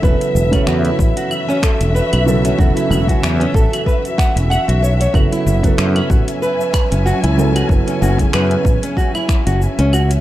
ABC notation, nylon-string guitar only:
X:1
M:4/4
L:1/16
Q:"Swing 16ths" 1/4=94
K:F#m
V:1 name="Nylon-string guitar"
B3 C F E2 F z C A z B3 C | F E2 F z C A z B z f z f F c c | F E2 F z C F z B3 C F E2 F | z C F z B3 C F E2 F z C F z |]